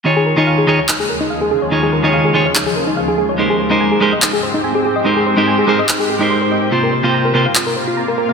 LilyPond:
<<
  \new Staff \with { instrumentName = "Synth arpeggio sound" } { \time 4/4 \key ees \mixolydian \tempo 4 = 144 ees'16 aes'16 bes'16 ees'16 f''16 aes'16 aes'16 des''16 ees'16 aes'16 bes'16 ees'16 f''16 aes'16 aes'16 des''16 | ees'16 aes'16 bes'16 ees'16 f''16 aes'16 aes'16 des''16 ees'16 aes'16 bes'16 ees'16 f''16 aes'16 aes'16 des''16 | ees'16 aes'16 c''16 ees'16 aes''16 aes'16 aes'16 ees''16 ees'16 aes'16 c''16 ees'16 aes''16 aes'16 aes'16 ees''16 | ees'16 aes'16 c''16 ees'16 aes''16 aes'16 aes'16 ees''16 ees'16 aes'16 aes'16 ees'16 c''16 c''16 ees''16 c''16 |
f'16 bes'16 c''16 f'16 bes''16 bes'16 bes'16 f''16 f'16 bes'16 c''16 f'16 bes''16 bes'16 bes'16 f''16 | }
  \new Staff \with { instrumentName = "Clean electric guitar" } { \time 4/4 \key ees \mixolydian <ees ees' f' aes' des''>8. <ees ees' f' aes' des''>8. <ees ees' f' aes' des''>16 r2 r16 | <ees ees' f' aes' des''>8. <ees ees' f' aes' des''>8. <ees ees' f' aes' des''>16 r2 r16 | <aes ees' g' bes' c''>8. <aes ees' g' bes' c''>8. <aes ees' g' bes' c''>16 r2 r16 | <aes ees' g' bes' c''>8. <aes ees' g' bes' c''>8. <aes ees' g' bes' c''>16 r4 <aes ees' g' bes' c''>4~ <aes ees' g' bes' c''>16 |
<c bes f' g' c''>8. <c bes f' g' c''>8. <c bes f' g' c''>16 r2 r16 | }
  \new Staff \with { instrumentName = "Ambient pad" } { \clef bass \time 4/4 \key ees \mixolydian <ees, des f aes>1~ | <ees, des f aes>1 | <aes, c' g'>1~ | <aes, c' g'>1 |
<c bes f'>1 | }
  \new DrumStaff \with { instrumentName = "Drums" } \drummode { \time 4/4 r4 r4 hc4 r4 | r4 r4 hc4 r4 | r4 r4 hc4 r4 | r4 r4 hc4 r4 |
r4 r4 hc4 r4 | }
>>